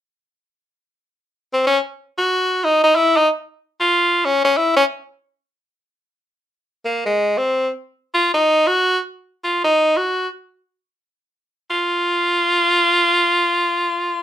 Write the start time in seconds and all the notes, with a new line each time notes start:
1.53 C4
1.67 C#4
2.18 F#4
2.64 D#4
2.84 D#4
2.95 E4
3.17 D#4
3.80 F4
4.25 C#4
4.44 C#4
4.57 E4
4.76 C#4
6.85 A#3
7.06 G#3
7.38 C4
8.14 F4
8.34 D#4
8.67 F#4
9.44 F4
9.64 D#4
9.97 F#4
11.70 F4